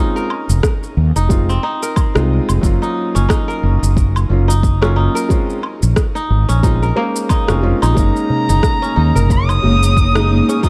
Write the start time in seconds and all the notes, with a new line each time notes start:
Already playing: G#3 C4 C#4 D#4 F4
0.16 A#4, shaker
0.30 low woodblock
0.49 F1, shaker
0.63 kick, cross-stick, shaker
0.83 shaker
0.97 D#2
1.16 F1 D#4, shaker
1.29 G#3 C4 D#4 F4, kick, shaker
1.49 C4, shaker
1.63 D#4
1.83 A#4, shaker
1.96 kick, low woodblock, shaker
2.15 C2 G#3 C4 D#4 F4, cross-stick, shaker
2.49 F1, low woodblock, shaker
2.61 F#1 F#3 A#3 C#4 F4, kick, shaker
2.82 D#4, shaker
3.15 F#1 C#4, shaker
3.29 D#4, kick, cross-stick, shaker
3.48 A#4, shaker
3.63 F#1
3.83 F#1, shaker
3.97 kick, shaker
4.16 low woodblock, shaker
4.29 F#1 F#3 A#3 C#4 F4
4.48 D#4, shaker
4.63 kick, shaker
4.81 F#3 A#3 C#4 F4, cross-stick, shaker
4.96 D#4
5.15 A#4, shaker
5.29 G#3 C4 C#4 F4, kick, shaker
5.50 shaker
5.63 low woodblock
5.83 A#1, shaker
5.96 kick, cross-stick, shaker
6.15 D#4, shaker
6.30 G#1
6.49 A#1 C#4, shaker
6.63 G#3 C4 C#4 D#4 F4, kick, shaker
6.82 A#4, shaker
6.96 G#3 A#3 C#4 G#4 C5
7.16 shaker
7.29 D#4, kick, low woodblock, shaker
7.48 F1 G#3 C4 C#4 F4, cross-stick, shaker
7.62 G#3 C4 C#4 F4
7.82 A#1 D#4, low woodblock, shaker
7.94 F#1 G#3 A#3 C#4 D#4 A#5, kick, shaker
8.16 shaker
8.30 C#5, darbuka dum
8.49 F#1 D#4, shaker
8.63 kick, cross-stick, shaker
8.70 D#4
8.82 C#4, shaker
8.96 D#2 D#4
9.03 G#4
9.15 F#1 A#4, darbuka dum, shaker
9.30 D#6, kick, shaker
9.49 darbuka ka, low woodblock, shaker
9.63 F#1 G#3 A#3 C#4 D#4, darbuka ka
9.83 shaker
9.97 kick, darbuka tek, shaker
10.15 G#3 A#3 C#4 D#4, cross-stick, shaker
10.29 darbuka tek
10.49 C#4, darbuka tek, shaker
10.63 G#3 C4 D#4 F4 D#6, kick, darbuka ka, shaker